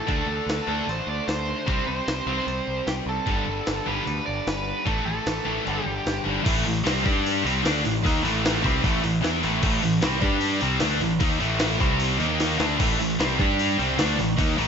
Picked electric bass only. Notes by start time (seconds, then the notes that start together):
0.09 D2
0.26 D2
0.46 D2
0.67 D2
0.88 A1
1.07 D2
1.28 D2
1.68 C2
1.87 C2
2.08 C2
2.27 C2
2.47 C2
2.68 C2
2.87 C2
3.06 C2
3.27 G1
3.48 G1
3.67 G1
3.88 G1
4.07 D2
4.28 G1
4.47 G1
4.86 A1
5.06 A1
5.27 A1
5.46 A1
5.67 G1
5.86 G1
6.06 G1
6.26 G1
6.46 A1
6.66 A1
6.86 C2
7.06 G2
7.45 C2
7.65 D2
7.85 A1
8.05 D#2
8.25 A1
8.65 C2
8.84 A1
9.04 A1
9.23 E2
9.44 A1
9.64 A1
9.84 A1
10.03 C2
10.22 G2
10.62 C2
10.81 D2
11.01 A1
11.21 D#2
11.41 A1
11.81 C2
12.20 D#2
12.60 D2
12.80 A1
13.00 A1
13.19 C2
13.40 G2
13.79 C2
13.98 D2
14.20 A1
14.39 D#2
14.58 A1